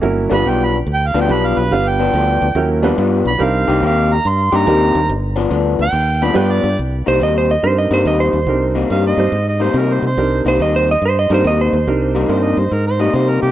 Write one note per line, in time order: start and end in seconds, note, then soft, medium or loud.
0.01 0.27 G1 loud
0.01 0.28 F#3 medium
0.01 0.28 A#3 medium
0.01 0.28 C#4 medium
0.01 0.28 E4 medium
0.01 0.28 A#4 medium
0.30 0.43 G1 medium
0.30 0.44 G2 medium
0.30 0.45 F3 medium
0.30 0.67 G3 medium
0.30 0.68 B3 medium
0.30 0.44 B3 medium
0.30 0.45 D4 medium
0.30 0.68 D4 medium
0.30 0.68 F4 medium
0.30 0.68 B4 medium
0.34 0.51 B5 loud
0.45 0.81 B1 medium
0.45 0.77 G2 medium
0.45 0.78 F3 medium
0.45 0.78 B3 medium
0.45 0.78 D4 medium
0.49 0.66 G5 loud
0.65 0.76 B5 medium
0.87 1.11 D2 medium
0.94 1.09 G5 loud
1.07 1.18 F5 loud
1.14 1.27 D2 loud
1.14 1.28 G2 medium
1.14 1.28 F3 medium
1.14 1.29 B3 loud
1.14 1.29 D4 loud
1.21 1.34 G5 medium
1.28 1.53 B1 loud
1.28 1.62 G2 medium
1.28 1.62 F3 medium
1.28 1.70 G3 medium
1.28 1.70 B3 medium
1.28 1.62 B3 medium
1.28 1.70 D4 medium
1.28 1.62 D4 medium
1.28 1.72 F4 medium
1.28 1.71 B4 medium
1.33 1.48 B5 loud
1.47 1.61 F5 medium
1.57 1.70 B1 medium
1.57 1.75 B4 loud
1.71 2.07 G1 loud
1.71 1.97 G3 medium
1.71 1.97 B3 medium
1.71 1.97 D4 medium
1.71 1.98 F4 medium
1.71 1.98 B4 medium
1.71 1.90 F5 loud
1.88 2.69 G5 loud
2.00 2.12 G2 medium
2.00 2.13 F3 medium
2.00 2.13 B3 medium
2.00 2.14 D4 loud
2.13 2.37 D2 medium
2.13 2.46 G2 medium
2.13 2.46 F3 medium
2.13 2.47 B3 medium
2.13 2.47 D4 medium
2.42 2.54 D2 medium
2.55 2.91 D#2 medium
2.55 2.81 F#3 medium
2.55 2.81 A#3 medium
2.55 2.81 C#4 medium
2.55 2.81 E4 medium
2.55 2.82 A#4 medium
2.82 2.97 G2 medium
2.82 2.97 F3 loud
2.82 3.20 G3 medium
2.82 3.20 B3 medium
2.82 2.97 B3 medium
2.82 2.98 D4 loud
2.82 3.20 D4 medium
2.82 3.21 F4 medium
2.82 3.21 B4 medium
2.98 3.30 G2 medium
2.98 3.22 G2 loud
2.98 3.30 F3 medium
2.98 3.31 B3 medium
2.98 3.31 D4 loud
3.25 3.38 B1 medium
3.25 3.45 B5 loud
3.38 3.64 C2 loud
3.38 4.04 G3 medium
3.38 4.04 C4 medium
3.38 4.04 D4 medium
3.38 4.05 D#4 medium
3.38 4.05 A#4 medium
3.43 3.83 F5 loud
3.68 3.80 C2 medium
3.68 3.81 C3 medium
3.68 3.81 A#3 medium
3.68 3.82 D#4 loud
3.68 3.82 G4 loud
3.82 4.18 D#2 loud
3.82 4.15 C3 medium
3.82 4.15 A#3 medium
3.82 4.15 D#4 medium
3.82 4.15 G4 medium
3.82 4.15 F5 loud
4.14 4.30 A#5 loud
4.25 4.49 G2 loud
4.25 4.58 C6 loud
4.52 4.65 G2 loud
4.52 4.65 C3 medium
4.52 4.65 A#3 medium
4.52 4.66 D#4 medium
4.52 4.66 G4 loud
4.57 5.10 A#5 loud
4.66 4.91 D#2 loud
4.66 4.99 C3 medium
4.66 5.09 G3 medium
4.66 4.99 A#3 medium
4.66 5.09 C4 medium
4.66 5.09 D4 medium
4.66 4.99 D#4 medium
4.66 5.09 D#4 medium
4.66 4.99 G4 medium
4.66 5.10 A#4 medium
4.95 5.07 D#2 medium
5.09 5.45 G1 loud
5.36 5.49 G2 medium
5.36 5.50 F3 loud
5.36 5.50 B3 loud
5.36 5.50 D4 loud
5.50 5.75 D2 loud
5.50 5.83 G2 medium
5.50 5.83 F3 medium
5.50 5.84 B3 medium
5.50 5.84 D4 medium
5.79 5.91 D2 medium
5.79 6.26 G5 loud
5.93 6.29 D#2 medium
6.22 6.34 G2 medium
6.22 6.34 F3 medium
6.22 6.34 B3 loud
6.22 6.36 D4 loud
6.22 6.38 B5 loud
6.34 6.59 G2 loud
6.34 6.68 G2 medium
6.34 6.68 F3 medium
6.34 6.60 G3 medium
6.34 6.60 B3 medium
6.34 6.68 B3 medium
6.34 6.60 D4 medium
6.34 6.69 D4 medium
6.34 6.61 F4 medium
6.34 6.61 B4 medium
6.34 6.53 G5 loud
6.52 6.78 D5 loud
6.64 6.76 G2 medium
6.79 7.02 C2 loud
7.06 7.19 C2 medium
7.06 7.20 C3 medium
7.06 7.20 G3 medium
7.06 7.21 A#3 medium
7.06 7.21 D#4 medium
7.06 7.21 C5 medium
7.20 7.56 D#2 medium
7.20 7.53 C3 medium
7.20 7.53 G3 medium
7.20 7.53 A#3 medium
7.20 7.54 D#4 medium
7.20 7.36 D#5 medium
7.38 7.50 C5 medium
7.51 7.64 D#5 medium
7.63 7.87 G2 medium
7.63 8.28 G3 medium
7.63 8.28 C4 medium
7.63 8.28 D4 medium
7.63 8.28 D#4 soft
7.63 8.28 A#4 medium
7.63 7.77 C5 medium
7.78 7.91 D#5 medium
7.91 8.03 G2 medium
7.91 8.05 C3 medium
7.91 8.05 G3 medium
7.91 8.06 A#3 medium
7.91 8.05 D#4 loud
7.91 8.06 C5 medium
8.05 8.29 D#2 medium
8.05 8.38 C3 medium
8.05 8.38 G3 medium
8.05 8.38 A#3 medium
8.05 8.38 D#4 medium
8.05 8.20 D#5 medium
8.20 9.43 C5 medium
8.33 8.45 D#2 medium
8.46 8.83 C2 medium
8.46 8.73 G3 medium
8.46 8.73 C4 medium
8.46 8.73 D4 medium
8.46 8.73 D#4 medium
8.46 8.73 A#4 medium
8.75 8.89 C3 medium
8.75 8.89 G3 medium
8.75 8.90 A#3 medium
8.75 8.90 D#4 medium
8.90 9.14 G2 medium
8.90 9.22 C3 medium
8.90 9.23 G3 medium
8.90 9.23 A#3 medium
8.90 9.23 D#4 medium
8.90 9.04 F5 medium
9.07 9.47 D#5 medium
9.17 9.30 G2 medium
9.17 9.31 G3 medium
9.17 9.31 C4 medium
9.17 9.31 D4 medium
9.17 9.31 D#4 medium
9.17 9.32 C5 medium
9.32 9.68 G#2 medium
9.48 9.64 D#5 medium
9.60 9.72 C3 medium
9.60 9.73 G3 medium
9.60 9.74 A#3 medium
9.60 9.74 D#4 loud
9.60 9.80 C5 medium
9.74 10.07 C3 medium
9.74 9.98 C3 medium
9.74 10.07 G3 medium
9.74 10.07 A#3 medium
9.74 10.07 D#4 medium
9.78 9.95 A#4 medium
9.94 10.05 C5 medium
10.02 10.15 C3 medium
10.07 10.41 C5 medium
10.17 10.41 C2 medium
10.17 10.42 G3 medium
10.17 10.43 C4 medium
10.17 10.43 D4 medium
10.17 10.43 D#4 medium
10.17 10.43 A#4 medium
10.45 10.57 C2 medium
10.45 10.58 C3 medium
10.45 10.59 G3 medium
10.45 10.59 A#3 medium
10.45 10.59 D#4 medium
10.45 10.61 C5 medium
10.59 10.95 D#2 loud
10.59 10.92 C3 medium
10.59 10.92 G3 medium
10.59 10.92 A#3 medium
10.59 10.93 D#4 medium
10.59 10.75 D#5 medium
10.76 10.89 C5 medium
10.91 11.03 D#5 medium
11.02 11.26 G2 medium
11.02 11.18 C5 medium
11.19 11.31 D#5 medium
11.30 11.42 G2 medium
11.30 11.43 C3 medium
11.30 11.43 G3 medium
11.30 11.43 A#3 medium
11.30 11.43 C4 medium
11.30 11.44 D4 medium
11.30 11.44 D#4 medium
11.30 11.44 A#4 medium
11.34 11.46 C5 medium
11.44 11.68 D#2 loud
11.44 11.77 C3 medium
11.44 11.77 G3 medium
11.44 11.77 A#3 medium
11.44 11.77 D#4 medium
11.44 11.60 D#5 medium
11.61 12.84 C5 medium
11.73 11.85 D#2 medium
11.87 12.23 C2 medium
11.87 12.26 G3 medium
11.87 12.27 C4 medium
11.87 12.27 D4 medium
11.87 12.27 D#4 medium
11.87 12.28 A#4 medium
12.15 12.28 C3 medium
12.15 12.28 G3 medium
12.15 12.28 A#3 medium
12.15 12.29 D#4 medium
12.28 12.53 G2 medium
12.28 12.62 C3 medium
12.28 12.54 G3 medium
12.28 12.62 G3 medium
12.28 12.62 A#3 medium
12.28 12.54 C4 medium
12.28 12.54 D4 medium
12.28 12.54 D#4 medium
12.28 12.62 D#4 medium
12.28 12.55 A#4 medium
12.28 12.45 C5 medium
12.44 12.61 D#5 medium
12.57 12.69 G2 medium
12.57 12.75 C5 medium
12.72 13.08 G#2 medium
12.72 12.86 A#4 medium
12.87 13.03 C5 medium
12.99 13.13 C3 medium
12.99 13.14 G3 medium
12.99 13.14 A#3 medium
12.99 13.14 D#4 medium
12.99 13.16 D#5 medium
13.14 13.38 C3 medium
13.14 13.47 C3 medium
13.14 13.47 G3 medium
13.14 13.47 A#3 medium
13.14 13.48 D#4 medium
13.14 13.31 C5 medium
13.30 13.41 A#4 medium
13.42 13.52 C3 medium
13.42 13.52 G4 medium